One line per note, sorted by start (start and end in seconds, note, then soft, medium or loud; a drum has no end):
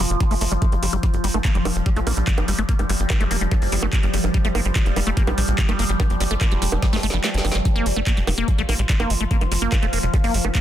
0.00 7.64 F3 medium
0.00 1.05 F4 medium
0.10 0.16 F1 medium
0.10 closed hi-hat soft
0.20 0.24 G3 medium
0.20 kick loud
0.20 closed hi-hat medium
0.31 0.37 G1 medium
0.31 0.35 A3 loud
0.31 open hi-hat medium
0.41 0.47 G1 loud
0.41 0.45 A3 medium
0.41 open hi-hat loud
0.52 0.58 G1 medium
0.52 0.54 G3 loud
0.52 closed hi-hat soft
0.62 0.66 A3 medium
0.62 kick loud
0.62 closed hi-hat medium
0.72 0.78 G1 medium
0.72 0.75 G3 medium
0.72 closed hi-hat soft
0.83 0.89 G1 loud
0.83 0.86 G3 medium
0.83 open hi-hat loud
0.93 0.99 G1 medium
0.93 0.97 G3 medium
0.93 closed hi-hat medium
1.03 7.67 G3 medium
1.03 1.06 G3 medium
1.03 kick loud
1.03 closed hi-hat medium
1.14 1.20 G1 medium
1.14 closed hi-hat soft
1.24 1.30 G1 loud
1.24 1.28 G3 medium
1.24 open hi-hat loud
1.34 1.41 G1 medium
1.34 1.38 A3 loud
1.34 high bongo soft
1.45 1.50 A#3 medium
1.45 kick loud
1.45 clap loud
1.45 closed hi-hat medium
1.55 1.61 F1 medium
1.55 1.57 G3 medium
1.55 closed hi-hat soft
1.65 1.72 F1 loud
1.65 1.68 G3 medium
1.65 open hi-hat loud
1.65 high bongo medium
1.76 1.82 F1 medium
1.76 closed hi-hat medium
1.86 1.90 G3 medium
1.86 kick loud
1.86 closed hi-hat medium
1.96 2.03 A#1 medium
1.96 2.00 A3 loud
1.96 closed hi-hat soft
2.07 2.13 A#1 medium
2.07 2.12 A#3 medium
2.07 open hi-hat loud
2.07 high bongo soft
2.17 2.23 A#1 medium
2.17 2.19 G3 medium
2.17 closed hi-hat soft
2.27 2.30 G3 medium
2.27 kick loud
2.27 clap loud
2.27 closed hi-hat medium
2.38 2.44 G1 medium
2.38 closed hi-hat medium
2.38 high bongo medium
2.48 2.54 G1 loud
2.48 2.52 G3 medium
2.48 open hi-hat loud
2.58 2.65 G1 medium
2.58 2.62 A3 loud
2.58 closed hi-hat soft
2.69 2.75 A#3 medium
2.69 kick loud
2.69 closed hi-hat medium
2.79 2.85 G1 medium
2.79 2.81 G3 medium
2.79 closed hi-hat medium
2.79 high bongo soft
2.89 2.96 G1 loud
2.89 2.92 G3 medium
2.89 open hi-hat loud
3.00 3.06 G1 medium
3.00 closed hi-hat medium
3.10 3.14 G3 medium
3.10 kick loud
3.10 clap loud
3.10 closed hi-hat medium
3.10 high bongo medium
3.20 3.27 F1 medium
3.20 3.24 A3 loud
3.20 closed hi-hat medium
3.31 3.37 F1 loud
3.31 3.37 A#3 medium
3.31 open hi-hat loud
3.41 3.47 F1 medium
3.41 3.43 G3 medium
3.41 closed hi-hat soft
3.52 3.54 G3 medium
3.52 kick loud
3.52 closed hi-hat medium
3.52 high bongo soft
3.62 3.68 G1 medium
3.62 open hi-hat medium
3.72 3.79 G1 medium
3.72 3.76 G3 medium
3.72 open hi-hat loud
3.83 3.89 G1 medium
3.83 3.86 A3 loud
3.83 high bongo medium
3.93 3.99 A#3 medium
3.93 kick loud
3.93 clap loud
3.93 closed hi-hat medium
4.03 4.10 G1 medium
4.03 4.06 G3 medium
4.03 closed hi-hat medium
4.14 4.20 G1 loud
4.14 4.16 G3 medium
4.14 open hi-hat loud
4.24 4.30 G1 medium
4.24 closed hi-hat medium
4.24 high bongo soft
4.34 4.38 G3 medium
4.34 kick loud
4.34 closed hi-hat medium
4.45 4.51 G1 medium
4.45 4.48 A3 loud
4.45 closed hi-hat medium
4.55 4.61 G1 loud
4.55 4.61 A#3 medium
4.55 open hi-hat loud
4.55 high bongo medium
4.65 4.72 G1 medium
4.65 4.68 G3 medium
4.65 closed hi-hat medium
4.76 4.78 G3 medium
4.76 kick loud
4.76 clap loud
4.76 closed hi-hat medium
4.86 4.92 F1 medium
4.86 closed hi-hat medium
4.96 5.03 F1 loud
4.96 5.00 G3 medium
4.96 open hi-hat loud
4.96 high bongo soft
5.07 5.13 F1 medium
5.07 5.10 A3 loud
5.07 closed hi-hat soft
5.17 5.23 A#3 medium
5.17 kick loud
5.17 closed hi-hat medium
5.27 5.34 A#1 medium
5.27 5.30 G3 medium
5.27 closed hi-hat soft
5.27 high bongo medium
5.38 5.44 A#1 loud
5.38 5.40 G3 medium
5.38 open hi-hat loud
5.48 5.54 A#1 medium
5.48 closed hi-hat medium
5.58 5.62 G3 medium
5.58 kick loud
5.58 clap loud
5.58 closed hi-hat medium
5.69 5.75 G1 medium
5.69 5.73 A3 loud
5.69 closed hi-hat medium
5.69 high bongo soft
5.79 5.85 G1 loud
5.79 5.85 A#3 medium
5.79 open hi-hat loud
5.89 5.96 G1 medium
5.89 5.92 G3 medium
5.89 closed hi-hat medium
6.00 6.02 G3 medium
6.00 kick loud
6.00 closed hi-hat medium
6.00 high bongo medium
6.10 6.16 G1 medium
6.10 closed hi-hat medium
6.20 6.27 G1 loud
6.20 6.24 G3 medium
6.20 open hi-hat medium
6.31 6.37 G1 medium
6.31 6.35 A3 loud
6.31 closed hi-hat medium
6.41 6.47 A#3 medium
6.41 kick loud
6.41 clap loud
6.41 closed hi-hat medium
6.41 high bongo soft
6.51 6.58 F1 medium
6.51 6.54 G3 medium
6.51 closed hi-hat medium
6.62 6.68 F1 loud
6.62 6.64 G3 medium
6.62 open hi-hat loud
6.72 6.78 F1 loud
6.72 closed hi-hat medium
6.72 high bongo medium
6.83 6.86 G3 medium
6.83 kick loud
6.83 snare medium
6.83 closed hi-hat medium
6.93 6.99 G1 medium
6.93 6.97 A3 loud
6.93 snare medium
6.93 open hi-hat medium
7.03 7.10 G1 medium
7.03 7.07 A3 loud
7.03 open hi-hat loud
7.10 7.20 G1 medium
7.10 7.17 F3 medium
7.10 snare medium
7.10 closed hi-hat medium
7.10 high bongo soft
7.24 7.30 A3 medium
7.24 snare medium
7.24 clap loud
7.24 closed hi-hat medium
7.34 7.41 G1 medium
7.34 snare loud
7.34 closed hi-hat medium
7.45 7.51 G1 loud
7.45 7.47 G3 medium
7.45 open hi-hat loud
7.45 high bongo medium
7.52 7.61 G1 medium
7.52 7.57 A#3 medium
7.52 snare loud
7.52 closed hi-hat medium
7.65 10.61 F3 medium
7.65 7.68 G3 medium
7.65 10.61 F4 medium
7.65 kick loud
7.65 closed hi-hat medium
7.76 7.82 G1 medium
7.76 7.87 A#3 loud
7.76 closed hi-hat medium
7.86 7.92 G1 loud
7.86 7.90 G3 medium
7.86 open hi-hat loud
7.96 8.03 G1 medium
7.96 8.00 A3 medium
7.96 high bongo soft
8.07 8.12 A#3 medium
8.07 kick loud
8.07 clap loud
8.07 closed hi-hat medium
8.17 8.23 F1 medium
8.17 8.19 G3 medium
8.17 closed hi-hat medium
8.27 8.34 F1 loud
8.27 8.30 G3 medium
8.27 open hi-hat loud
8.27 high bongo medium
8.38 8.44 F1 medium
8.38 8.50 A#3 loud
8.38 closed hi-hat medium
8.48 8.52 G3 medium
8.48 kick loud
8.48 closed hi-hat medium
8.58 8.65 A#1 medium
8.58 8.62 A3 loud
8.58 closed hi-hat medium
8.69 8.75 A#1 medium
8.69 8.74 A#3 medium
8.69 open hi-hat loud
8.69 high bongo soft
8.79 8.85 A#1 medium
8.79 8.81 G3 medium
8.79 closed hi-hat medium
8.89 8.92 G3 medium
8.89 kick loud
8.89 clap loud
8.89 closed hi-hat medium
9.00 9.06 G1 medium
9.00 9.12 A#3 medium
9.00 closed hi-hat medium
9.00 high bongo medium
9.10 9.16 G1 loud
9.10 9.14 G3 medium
9.10 open hi-hat loud
9.20 9.27 G1 medium
9.20 9.24 A3 loud
9.20 closed hi-hat medium
9.31 9.37 A#3 medium
9.31 kick loud
9.31 closed hi-hat medium
9.41 9.47 G1 medium
9.41 9.43 G3 medium
9.41 closed hi-hat medium
9.41 high bongo soft
9.51 9.58 G1 loud
9.51 9.54 G3 medium
9.51 open hi-hat loud
9.62 9.68 G1 medium
9.62 9.74 A#3 medium
9.62 closed hi-hat medium
9.72 9.76 G3 medium
9.72 kick loud
9.72 clap loud
9.72 closed hi-hat medium
9.72 high bongo medium
9.82 9.89 F1 medium
9.82 9.86 A3 loud
9.82 closed hi-hat soft
9.93 9.99 F1 loud
9.93 9.99 A#3 medium
9.93 open hi-hat loud
10.03 10.10 F1 medium
10.03 10.06 G3 medium
10.03 closed hi-hat medium
10.14 10.16 G3 medium
10.14 kick loud
10.14 closed hi-hat medium
10.14 high bongo soft
10.24 10.30 G1 medium
10.24 10.36 A#3 loud
10.24 open hi-hat medium
10.34 10.41 G1 medium
10.34 10.38 G3 medium
10.34 open hi-hat loud
10.45 10.51 G1 medium
10.45 10.48 A3 medium
10.45 high bongo medium
10.55 10.61 A#3 medium
10.55 kick loud
10.55 clap loud
10.55 closed hi-hat medium